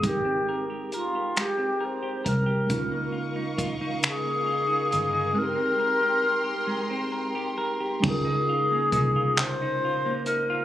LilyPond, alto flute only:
\new Staff \with { instrumentName = "Alto flute" } { \time 6/8 \key des \lydian \tempo 4. = 45 g'8 r8 f'8 g'8 c''8 bes'8~ | bes'4 r8 aes'4. | bes'2 r4 | aes'4. c''4 bes'8 | }